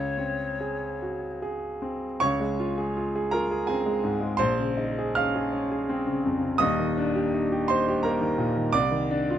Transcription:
0.00 2.17 C#2 medium
0.00 1.39 C#5 medium
0.18 0.86 C4 soft
0.61 1.27 G#4 soft
1.02 1.42 F#4 soft
1.42 2.06 G#4 medium
1.82 2.21 C4 soft
2.20 4.36 C#2 medium
2.20 3.29 C#5 medium
2.20 3.32 C#6 loud
2.40 2.70 G#3 medium
2.60 2.89 F4 medium
2.78 3.07 G#4 medium
2.97 3.26 F4 medium
3.16 3.44 G#4 medium
3.31 3.62 F4 medium
3.31 3.66 A#4 medium
3.31 3.68 A#5 medium
3.51 3.67 G#4 medium
3.67 3.97 C4 medium
3.67 4.35 G#4 medium
3.67 4.38 G#5 medium
3.86 4.14 G#3 medium
4.03 4.32 G#2 medium
4.21 4.39 G#3 medium
4.37 6.56 A#1 medium
4.37 5.13 C5 medium
4.37 5.16 C6 loud
4.59 4.90 C#3 medium
4.77 5.09 D#4 medium
4.98 5.29 G#4 medium
5.15 5.46 C#4 medium
5.15 6.56 F5 medium
5.15 6.59 F6 loud
5.36 5.64 G#4 medium
5.53 5.81 C#4 medium
5.71 5.99 G#4 medium
5.89 6.17 C4 medium
6.07 6.35 C#3 medium
6.26 6.54 F2 medium
6.42 6.61 C#3 medium
6.58 8.68 D#1 medium
6.58 8.69 D#2 medium
6.58 7.65 D#5 medium
6.58 7.68 D#6 loud
6.79 7.08 D#3 medium
6.98 7.27 D4 medium
7.16 7.44 G4 medium
7.34 7.62 D#4 medium
7.52 7.80 G4 medium
7.68 7.97 D#4 medium
7.68 8.02 C5 medium
7.68 8.03 C6 loud
7.88 8.15 G4 medium
8.03 8.32 A#3 medium
8.03 8.69 A#4 medium
8.03 8.73 A#5 medium
8.21 8.49 D#3 medium
8.38 8.66 A#2 medium
8.57 8.74 D#3 medium
8.73 9.38 C2 medium
8.73 9.38 D5 medium
8.73 9.38 D6 loud
8.91 9.22 D#3 medium
9.11 9.38 D4 medium
9.30 9.38 F4 medium

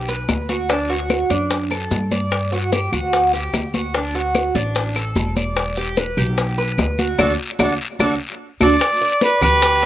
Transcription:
0.00 0.25 B1 medium
0.08 0.48 B4 medium
0.08 high bongo soft
0.08 high conga soft
0.08 maracas medium
0.29 1.24 D2 medium
0.29 high bongo soft
0.29 low bongo medium
0.29 high conga medium
0.29 short guiro medium
0.29 claves medium
0.29 maracas medium
0.49 0.69 F#4 medium
0.49 high bongo soft
0.49 high conga medium
0.49 short guiro medium
0.49 maracas soft
0.69 0.89 D4 medium
0.69 high bongo medium
0.69 high conga soft
0.69 long guiro medium
0.69 maracas medium
0.90 1.29 F#4 medium
0.90 high bongo soft
0.90 high conga soft
1.10 high bongo medium
1.10 high conga medium
1.10 short guiro medium
1.10 claves medium
1.10 maracas medium
1.30 1.87 F#2 medium
1.30 1.70 D4 medium
1.30 high conga medium
1.30 short guiro medium
1.30 maracas soft
1.50 high bongo medium
1.50 high conga soft
1.50 long guiro medium
1.50 maracas medium
1.71 2.10 A4 medium
1.71 high bongo soft
1.71 high conga soft
1.71 claves medium
1.91 2.87 G2 medium
1.91 high bongo soft
1.91 low bongo medium
1.91 high conga medium
1.91 short guiro medium
1.91 maracas medium
2.11 2.51 D5 medium
2.11 high bongo soft
2.11 high conga medium
2.11 short guiro medium
2.11 maracas soft
2.31 high bongo medium
2.31 high conga soft
2.31 long guiro medium
2.31 claves medium
2.31 maracas medium
2.52 2.72 F#4 medium
2.52 high bongo soft
2.52 high conga soft
2.52 maracas medium
2.72 2.92 G4 medium
2.72 high bongo medium
2.72 high conga medium
2.72 short guiro medium
2.72 maracas medium
2.92 3.50 D2 medium
2.92 3.32 F#4 medium
2.92 high conga soft
2.92 short guiro medium
2.92 claves medium
2.92 maracas soft
3.13 high bongo medium
3.13 high conga soft
3.13 long guiro medium
3.13 maracas medium
3.33 3.73 G4 medium
3.33 high bongo soft
3.33 high conga soft
3.33 maracas medium
3.53 4.49 D2 medium
3.53 high bongo soft
3.53 low bongo medium
3.53 high conga medium
3.53 short guiro medium
3.53 claves medium
3.53 maracas medium
3.74 3.94 F#4 medium
3.74 high bongo soft
3.74 high conga medium
3.74 short guiro medium
3.74 maracas soft
3.94 4.14 D4 medium
3.94 high bongo medium
3.94 high conga soft
3.94 long guiro medium
3.94 maracas medium
4.15 4.54 F#4 medium
4.15 high bongo soft
4.15 high conga soft
4.35 high bongo medium
4.35 high conga medium
4.35 short guiro medium
4.35 claves medium
4.35 maracas medium
4.55 5.12 A1 medium
4.55 4.95 D4 medium
4.55 high conga medium
4.55 short guiro medium
4.55 maracas soft
4.75 high bongo medium
4.75 high conga soft
4.75 long guiro medium
4.75 maracas medium
4.95 5.35 A4 medium
4.95 high bongo soft
4.95 high conga soft
4.95 claves medium
4.95 maracas medium
5.16 6.11 E1 medium
5.16 high bongo soft
5.16 low bongo medium
5.16 high conga medium
5.16 short guiro medium
5.16 maracas medium
5.36 5.76 D5 medium
5.36 high bongo soft
5.36 high conga medium
5.36 short guiro medium
5.36 maracas soft
5.56 high bongo medium
5.56 high conga soft
5.56 long guiro medium
5.56 claves medium
5.56 maracas medium
5.76 5.97 G4 medium
5.76 high bongo soft
5.76 high conga soft
5.76 maracas medium
5.97 6.17 B4 medium
5.97 high bongo medium
5.97 high conga medium
5.97 short guiro medium
5.97 maracas medium
6.17 6.74 B1 medium
6.17 6.57 G4 medium
6.17 high conga soft
6.17 short guiro medium
6.17 claves medium
6.17 maracas soft
6.38 high bongo medium
6.38 high conga soft
6.38 long guiro medium
6.38 maracas medium
6.58 6.97 B4 medium
6.58 high bongo soft
6.58 high conga soft
6.78 7.16 D2 medium
6.78 high bongo soft
6.78 low bongo medium
6.78 high conga medium
6.78 short guiro medium
6.78 claves medium
6.78 maracas medium
6.98 7.18 F#4 medium
6.98 high bongo soft
6.98 high conga medium
6.98 short guiro medium
6.98 maracas soft
7.18 7.34 D2 medium
7.18 7.32 D4 medium
7.18 7.32 F#4 medium
7.18 7.32 A4 medium
7.18 low bongo medium
7.18 high conga medium
7.18 long guiro medium
7.18 claves medium
7.18 maracas medium
7.59 7.74 D2 loud
7.59 7.72 D4 medium
7.59 7.72 F#4 medium
7.59 7.72 A4 medium
7.59 low bongo medium
7.59 high conga medium
7.59 long guiro loud
7.59 claves medium
7.59 maracas medium
7.99 8.15 D2 medium
7.99 8.13 D4 medium
7.99 8.13 F#4 medium
7.99 8.13 A4 medium
7.99 low bongo medium
7.99 high conga loud
7.99 long guiro medium
7.99 claves loud
7.99 maracas loud
8.60 8.76 D2 medium
8.60 8.74 D4 medium
8.60 8.74 F#4 medium
8.60 8.74 A4 medium
8.60 9.19 D5 loud
8.60 low bongo medium
8.60 high conga loud
8.60 long guiro medium
8.60 claves medium
8.60 maracas medium
8.81 high bongo medium
8.81 high conga soft
8.81 long guiro medium
8.81 claves medium
8.81 maracas medium
9.01 9.41 D5 medium
9.01 high conga soft
9.01 maracas soft
9.21 9.41 B4 loud
9.21 high bongo medium
9.21 high conga medium
9.21 short guiro medium
9.21 maracas soft
9.41 9.86 D2 medium
9.41 9.81 G4 medium
9.41 9.86 B4 loud
9.41 low conga medium
9.41 short guiro medium
9.41 claves medium
9.41 maracas medium
9.62 high bongo medium
9.62 high conga soft
9.62 long guiro medium
9.62 maracas medium
9.83 9.86 D4 medium
9.83 maracas soft

